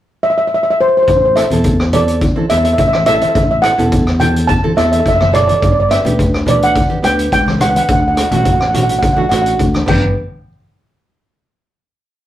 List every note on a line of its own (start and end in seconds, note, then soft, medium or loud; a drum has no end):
0.23 0.29 E5 medium
0.30 0.37 E5 medium
0.38 0.45 E5 medium
0.47 0.53 E5 medium
0.54 0.61 E5 medium
0.63 0.69 E5 medium
0.70 0.76 E5 medium
0.81 0.87 C5 medium
0.88 0.96 C5 medium
0.97 1.02 C5 medium
1.03 1.09 C5 medium
1.08 1.42 A1 medium
1.08 1.16 C5 medium
1.08 kick medium
1.08 closed hi-hat soft
1.17 1.24 C5 medium
1.25 1.32 C5 medium
1.35 1.45 C4 medium
1.35 1.45 E4 medium
1.35 1.45 A4 medium
1.35 1.95 E5 medium
1.35 cross-stick medium
1.35 closed hi-hat medium
1.50 2.30 E2 medium
1.50 1.77 C4 medium
1.50 1.77 E4 medium
1.50 1.77 A4 medium
1.50 closed hi-hat medium
1.50 high conga medium
1.50 low conga medium
1.64 kick medium
1.64 closed hi-hat medium
1.80 cross-stick medium
1.93 2.19 C4 medium
1.93 2.19 E4 medium
1.93 2.20 A4 medium
1.93 2.52 D5 medium
1.93 closed hi-hat medium
1.93 high conga medium
1.93 low conga medium
2.08 closed hi-hat medium
2.21 kick medium
2.21 closed hi-hat medium
2.36 2.44 C4 medium
2.36 2.45 E4 medium
2.36 2.45 A4 medium
2.36 high conga medium
2.49 2.73 E2 medium
2.49 2.84 C4 medium
2.49 2.84 E4 medium
2.49 2.84 A4 medium
2.49 2.56 E5 medium
2.49 cross-stick medium
2.49 closed hi-hat medium
2.58 2.63 E5 medium
2.65 2.72 E5 medium
2.65 closed hi-hat medium
2.73 2.78 E5 medium
2.78 3.23 A1 medium
2.78 2.87 E5 medium
2.78 kick medium
2.78 closed hi-hat medium
2.88 2.94 E5 medium
2.93 3.02 E5 medium
2.93 cross-stick medium
2.93 high conga medium
3.06 3.41 C4 medium
3.06 3.41 E4 medium
3.06 3.42 A4 medium
3.06 3.13 E5 medium
3.06 cross-stick medium
3.06 closed hi-hat medium
3.06 low conga medium
3.15 3.21 E5 medium
3.21 3.28 E5 medium
3.21 closed hi-hat medium
3.21 high conga medium
3.29 3.34 E5 medium
3.35 3.69 A1 medium
3.35 3.42 E5 medium
3.35 kick loud
3.35 closed hi-hat medium
3.43 3.50 E5 medium
3.51 3.59 E5 medium
3.62 3.72 C4 medium
3.62 3.72 E4 medium
3.62 3.72 A4 medium
3.62 4.21 F#5 medium
3.62 cross-stick medium
3.62 closed hi-hat medium
3.77 4.57 E2 medium
3.77 4.03 C4 medium
3.77 4.03 E4 medium
3.77 4.04 A4 medium
3.77 closed hi-hat soft
3.77 high conga medium
3.77 low conga medium
3.92 kick medium
3.92 closed hi-hat medium
4.07 cross-stick medium
4.20 4.46 C4 medium
4.20 4.46 E4 medium
4.20 4.46 A4 medium
4.20 4.49 G5 medium
4.20 closed hi-hat medium
4.20 high conga medium
4.20 low conga medium
4.36 closed hi-hat medium
4.47 4.77 A5 medium
4.47 kick medium
4.47 closed hi-hat medium
4.63 4.72 C4 medium
4.63 4.72 E4 medium
4.63 4.72 A4 medium
4.63 high conga medium
4.76 5.00 E2 medium
4.76 5.11 C4 medium
4.76 5.11 E4 medium
4.76 5.12 A4 medium
4.76 4.84 E5 medium
4.76 cross-stick medium
4.76 closed hi-hat medium
4.85 4.91 E5 medium
4.92 4.98 E5 medium
4.92 closed hi-hat medium
5.00 5.07 E5 medium
5.06 5.51 F#1 medium
5.06 5.14 E5 medium
5.06 kick medium
5.06 closed hi-hat soft
5.15 5.21 E5 medium
5.20 5.30 E5 medium
5.20 cross-stick medium
5.20 high conga medium
5.32 5.61 C4 medium
5.32 5.61 E4 medium
5.32 5.62 A4 medium
5.32 5.40 D5 medium
5.32 cross-stick medium
5.32 closed hi-hat medium
5.32 low conga medium
5.41 5.46 D5 medium
5.48 5.53 D5 medium
5.48 closed hi-hat soft
5.48 high conga medium
5.54 5.61 D5 medium
5.62 5.97 G1 medium
5.62 5.71 D5 medium
5.62 kick loud
5.62 closed hi-hat medium
5.72 5.79 D5 medium
5.80 5.87 D5 medium
5.89 5.99 B3 medium
5.89 5.99 D4 medium
5.89 5.99 G4 medium
5.89 6.49 E5 medium
5.89 cross-stick medium
5.89 closed hi-hat medium
6.03 6.83 D2 medium
6.03 6.30 B3 medium
6.03 6.30 D4 medium
6.03 6.31 G4 medium
6.03 closed hi-hat medium
6.03 high conga medium
6.03 low conga medium
6.19 kick medium
6.19 closed hi-hat medium
6.34 cross-stick medium
6.46 6.72 B3 medium
6.46 6.73 D4 medium
6.46 6.73 G4 medium
6.46 6.62 D5 medium
6.46 closed hi-hat medium
6.46 high conga medium
6.46 low conga medium
6.62 7.06 F#5 medium
6.62 closed hi-hat medium
6.76 kick loud
6.76 closed hi-hat medium
6.89 6.98 B3 medium
6.89 6.98 D4 medium
6.89 6.98 G4 medium
6.89 high conga medium
7.03 7.27 D2 medium
7.03 7.38 B3 medium
7.03 7.38 D4 medium
7.03 7.38 G4 medium
7.03 7.32 G5 medium
7.03 cross-stick medium
7.03 closed hi-hat medium
7.19 closed hi-hat medium
7.32 7.77 C#2 medium
7.32 7.45 G5 medium
7.32 kick medium
7.32 closed hi-hat medium
7.46 cross-stick medium
7.46 high conga medium
7.58 7.88 B3 medium
7.58 7.88 D4 medium
7.58 7.89 G4 medium
7.58 7.68 F#5 medium
7.58 cross-stick medium
7.58 closed hi-hat medium
7.58 low conga medium
7.70 7.75 F#5 medium
7.75 7.82 F#5 medium
7.75 closed hi-hat medium
7.75 high conga medium
7.83 7.90 F#5 soft
7.89 8.23 D2 medium
7.89 7.99 F#5 medium
7.89 kick loud
7.89 closed hi-hat medium
8.00 8.06 F#5 soft
8.08 8.14 F#5 medium
8.15 8.26 A3 medium
8.15 8.26 D4 medium
8.15 8.27 F#4 medium
8.15 8.21 F#5 soft
8.15 cross-stick medium
8.15 closed hi-hat medium
8.22 8.28 F#5 medium
8.29 9.11 A1 medium
8.29 8.57 A3 medium
8.29 8.58 D4 medium
8.29 8.58 F#4 medium
8.29 8.36 F#5 soft
8.29 closed hi-hat medium
8.29 high conga medium
8.29 low conga medium
8.37 8.43 F#5 medium
8.44 8.51 F#5 soft
8.44 kick medium
8.44 closed hi-hat medium
8.53 8.59 F#5 medium
8.60 8.66 F#5 soft
8.60 cross-stick medium
8.68 8.73 F#5 medium
8.73 8.99 A3 medium
8.73 9.00 D4 medium
8.73 9.00 F#4 medium
8.73 8.81 F#5 soft
8.73 closed hi-hat medium
8.73 high conga medium
8.73 low conga medium
8.83 8.89 F#5 medium
8.89 8.96 F#5 soft
8.89 closed hi-hat medium
8.99 9.04 F#5 medium
8.99 kick loud
9.03 9.11 F#5 soft
9.03 closed hi-hat medium
9.13 9.25 A3 medium
9.13 9.25 D4 medium
9.13 9.19 F#5 medium
9.13 high conga medium
9.18 9.26 F#4 medium
9.22 9.27 F#5 soft
9.29 9.54 A1 medium
9.29 9.65 A3 medium
9.29 9.65 D4 medium
9.29 9.65 F#4 medium
9.29 9.33 F#5 medium
9.29 cross-stick medium
9.29 closed hi-hat medium
9.34 9.40 F#5 soft
9.42 9.48 F#5 medium
9.46 closed hi-hat medium
9.59 9.82 D2 medium
9.59 kick medium
9.59 closed hi-hat medium
9.74 cross-stick medium
9.74 high conga medium
9.86 10.14 G1 medium
9.86 10.13 B3 medium
9.86 10.13 D4 medium
9.86 10.13 G4 medium
9.86 10.15 G5 medium
9.86 kick medium
9.86 crash medium
9.86 high conga medium